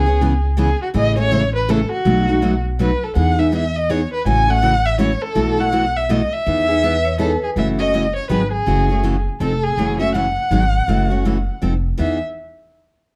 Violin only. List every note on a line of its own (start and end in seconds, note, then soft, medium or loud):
0.00 0.44 G#4 medium
0.59 0.79 G#4 medium
0.82 0.88 F#4 medium
0.96 1.16 D#5 medium
1.18 1.52 C#5 loud
1.55 1.71 B4 medium
1.70 1.91 A4 medium
1.92 2.61 F#4 loud
2.80 3.05 B4 medium
3.04 3.16 A4 medium
3.16 3.40 F#5 medium
3.39 3.53 E5 medium
3.55 3.77 E5 medium
3.76 3.92 D#5 medium
3.91 4.12 C#5 medium
4.13 4.26 B4 medium
4.27 4.52 G#5 loud
4.50 4.87 F#5 loud
4.86 5.00 E5 loud
5.00 5.23 C#5 medium
5.22 5.61 A4 loud
5.60 5.98 F#5 loud
5.96 6.12 E5 medium
6.11 6.35 D#5 medium
6.33 7.20 E5 loud
7.21 7.41 A4 medium
7.44 7.50 G#4 medium
7.58 7.68 E5 medium
7.79 8.13 D#5 medium
8.16 8.30 C#5 medium
8.31 8.51 B4 medium
8.52 9.22 G#4 medium
9.40 9.65 A4 medium
9.63 9.99 G#4 medium
10.00 10.14 E5 medium
10.15 11.58 F#5 loud
11.99 12.20 E5 medium